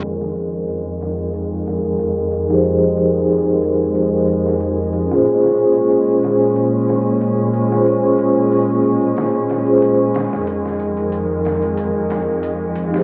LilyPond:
<<
  \new Staff \with { instrumentName = "Vibraphone" } { \time 4/4 \key f \minor \tempo 4 = 92 r2. r8. <f ees' g' aes' c''>16~ | <f ees' g' aes' c''>2.~ <f ees' g' aes' c''>8. <des' f' aes' c''>16~ | <des' f' aes' c''>2.~ <des' f' aes' c''>8. <des' f' aes' c''>16~ | <des' f' aes' c''>2~ <des' f' aes' c''>8. <des' f' aes' c''>8 r8. |
r2. r8. <f ees' g' aes' c''>16 | }
  \new Staff \with { instrumentName = "String section" } { \clef bass \time 4/4 \key f \minor <f, ees aes>1~ | <f, ees aes>1 | <bes, des'>1~ | <bes, des'>1 |
<f, ees>1 | }
  \new DrumStaff \with { instrumentName = "Drums" } \drummode { \time 4/4 hh16 sn16 hh16 hh16 hh8 <hh sn>16 hh16 hh8 <hh sn>8 hh8 hh16 sn16 | hh8 hh8 hho8 hh8 hh8 hh16 sn16 hh8 hh16 sn16 | hh16 sn16 hh16 hh16 hh8 <hh sn>16 hh16 hh8 <hh sn>8 hh8 hh16 sn16 | hh8 hh8 hho8 hh16 hh16 <hh sn>8 <hh sn>16 hh16 hh8 <hh sn>16 sn16 |
hh16 sn16 hh16 hh16 hh8 <hh sn>16 hh16 hh8 <hh sn>8 hh8 hh16 sn16 | }
>>